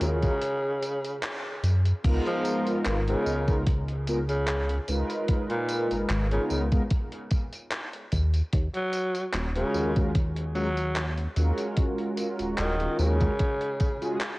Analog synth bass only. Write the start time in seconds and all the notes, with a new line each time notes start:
0.02 D#2
1.63 F#2
2.05 C#2
2.86 G#1
3.26 C#2
4.88 C#2
5.91 G#1
6.10 G#1
6.51 C#2
8.13 D#2
8.53 D#2
9.34 D#1
9.74 D#2
11.37 D#2
12.40 D#1
12.58 D#1
12.99 D#2